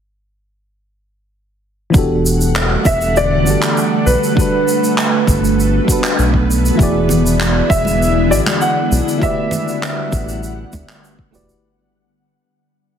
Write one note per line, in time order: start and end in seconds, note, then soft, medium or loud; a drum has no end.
1.90 3.40 E3 medium
1.90 3.41 B3 medium
1.90 3.42 D4 medium
1.94 2.77 E1 medium
1.94 4.34 D3 medium
1.94 4.35 G3 medium
1.94 6.75 A3 medium
1.94 3.43 F#4 medium
1.94 3.43 G4 medium
1.94 3.44 A4 medium
1.94 4.35 F#5 medium
1.94 kick loud
1.94 shaker soft
2.26 shaker medium
2.41 shaker soft
2.55 clap medium
2.55 shaker soft
2.85 3.47 E1 loud
2.85 3.17 E5 medium
2.85 kick medium
2.85 shaker medium
3.01 shaker soft
3.17 4.10 D5 loud
3.17 shaker soft
3.42 3.56 G1 medium
3.42 4.31 E3 medium
3.42 4.32 B3 medium
3.42 4.33 D4 medium
3.47 4.34 F#4 medium
3.47 4.35 G4 medium
3.47 4.35 A4 medium
3.47 shaker medium
3.62 clap medium
3.62 shaker medium
3.77 shaker soft
4.06 4.16 B1 loud
4.06 5.84 B4 medium
4.06 shaker medium
4.23 shaker medium
4.33 5.83 G3 medium
4.33 5.84 D4 medium
4.33 5.85 F#4 medium
4.33 kick loud
4.38 11.61 B3 medium
4.38 5.86 A4 medium
4.38 5.87 B4 medium
4.38 shaker soft
4.68 shaker medium
4.84 shaker soft
4.98 clap medium
4.98 shaker soft
5.27 5.80 G1 loud
5.27 kick loud
5.27 shaker medium
5.45 shaker medium
5.60 shaker soft
5.85 6.74 G3 medium
5.85 6.75 D4 medium
5.85 6.76 F#4 medium
5.85 kick medium
5.90 6.77 A4 medium
5.90 6.78 B4 medium
5.90 shaker medium
6.04 clap medium
6.04 shaker medium
6.19 6.71 B1 medium
6.19 shaker soft
6.34 kick medium
6.51 shaker medium
6.66 shaker medium
6.75 11.60 D3 medium
6.75 8.25 E3 medium
6.75 9.19 G#3 medium
6.75 8.26 E4 medium
6.75 kick loud
6.79 7.62 E1 loud
6.79 9.19 E4 medium
6.79 8.27 F#4 medium
6.79 8.28 G#4 medium
6.79 8.29 D5 medium
6.79 shaker medium
7.09 low conga medium
7.09 shaker medium
7.26 shaker medium
7.40 clap medium
7.40 shaker soft
7.70 8.32 E1 loud
7.70 8.32 E5 medium
7.70 kick loud
7.70 shaker medium
7.85 high conga medium
7.85 shaker medium
8.02 shaker soft
8.27 8.41 G#1 loud
8.27 9.16 E3 medium
8.27 9.17 E4 medium
8.27 9.18 F#4 medium
8.27 8.38 D5 medium
8.32 9.19 G#4 medium
8.32 9.20 D5 medium
8.32 shaker medium
8.46 clap medium
8.46 high conga medium
8.46 shaker medium
8.61 9.24 F#5 loud
8.61 shaker soft
8.92 9.01 B1 loud
8.92 shaker medium
9.08 shaker medium
9.18 10.68 A3 medium
9.18 10.68 E4 medium
9.18 10.69 F#4 medium
9.18 kick loud
9.22 11.63 G3 medium
9.22 10.70 G4 medium
9.22 10.71 B4 medium
9.22 10.71 D5 medium
9.22 11.00 E5 medium
9.22 11.63 F#5 medium
9.22 shaker soft
9.51 low conga medium
9.51 shaker medium
9.68 shaker soft
9.83 clap medium
9.83 shaker soft
10.12 10.65 A1 loud
10.12 kick loud
10.12 shaker medium
10.29 shaker medium
10.43 shaker soft
10.73 10.83 D2 loud
10.73 kick medium
10.73 high conga medium
10.73 shaker medium
10.89 clap medium
10.89 shaker medium
11.04 shaker soft
11.19 kick medium
11.31 11.54 E1 medium
11.31 11.44 A3 medium
11.31 11.45 E4 medium
11.31 11.45 F#4 medium
11.31 11.46 G4 medium
11.31 11.46 B4 medium
11.31 shaker medium
11.35 11.46 D5 medium
11.49 shaker medium